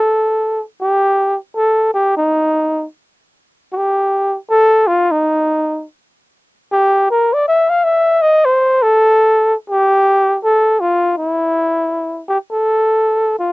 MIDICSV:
0, 0, Header, 1, 2, 480
1, 0, Start_track
1, 0, Tempo, 369686
1, 1039, Time_signature, 4, 2, 24, 8
1, 17561, End_track
2, 0, Start_track
2, 0, Title_t, "Flugelhorn"
2, 0, Program_c, 0, 56
2, 0, Note_on_c, 0, 69, 80
2, 823, Note_off_c, 0, 69, 0
2, 1056, Note_on_c, 0, 67, 96
2, 1779, Note_off_c, 0, 67, 0
2, 2031, Note_on_c, 0, 69, 92
2, 2462, Note_off_c, 0, 69, 0
2, 2517, Note_on_c, 0, 67, 88
2, 2782, Note_off_c, 0, 67, 0
2, 2816, Note_on_c, 0, 63, 86
2, 3707, Note_off_c, 0, 63, 0
2, 4833, Note_on_c, 0, 66, 70
2, 4898, Note_on_c, 0, 67, 87
2, 4917, Note_off_c, 0, 66, 0
2, 5672, Note_off_c, 0, 67, 0
2, 5839, Note_on_c, 0, 69, 110
2, 6324, Note_on_c, 0, 65, 95
2, 6343, Note_off_c, 0, 69, 0
2, 6636, Note_on_c, 0, 63, 79
2, 6655, Note_off_c, 0, 65, 0
2, 7588, Note_off_c, 0, 63, 0
2, 8725, Note_on_c, 0, 67, 101
2, 9167, Note_off_c, 0, 67, 0
2, 9227, Note_on_c, 0, 70, 94
2, 9523, Note_on_c, 0, 74, 90
2, 9542, Note_off_c, 0, 70, 0
2, 9687, Note_off_c, 0, 74, 0
2, 9707, Note_on_c, 0, 76, 94
2, 9991, Note_on_c, 0, 77, 90
2, 10011, Note_off_c, 0, 76, 0
2, 10182, Note_on_c, 0, 76, 94
2, 10202, Note_off_c, 0, 77, 0
2, 10671, Note_on_c, 0, 75, 106
2, 10690, Note_off_c, 0, 76, 0
2, 10969, Note_on_c, 0, 72, 94
2, 10988, Note_off_c, 0, 75, 0
2, 11457, Note_on_c, 0, 69, 110
2, 11476, Note_off_c, 0, 72, 0
2, 12396, Note_off_c, 0, 69, 0
2, 12592, Note_on_c, 0, 67, 100
2, 13480, Note_off_c, 0, 67, 0
2, 13553, Note_on_c, 0, 69, 91
2, 14026, Note_on_c, 0, 65, 82
2, 14045, Note_off_c, 0, 69, 0
2, 14489, Note_off_c, 0, 65, 0
2, 14511, Note_on_c, 0, 64, 80
2, 15881, Note_off_c, 0, 64, 0
2, 15942, Note_on_c, 0, 67, 78
2, 16073, Note_off_c, 0, 67, 0
2, 16253, Note_on_c, 0, 69, 89
2, 17324, Note_off_c, 0, 69, 0
2, 17387, Note_on_c, 0, 65, 69
2, 17561, Note_off_c, 0, 65, 0
2, 17561, End_track
0, 0, End_of_file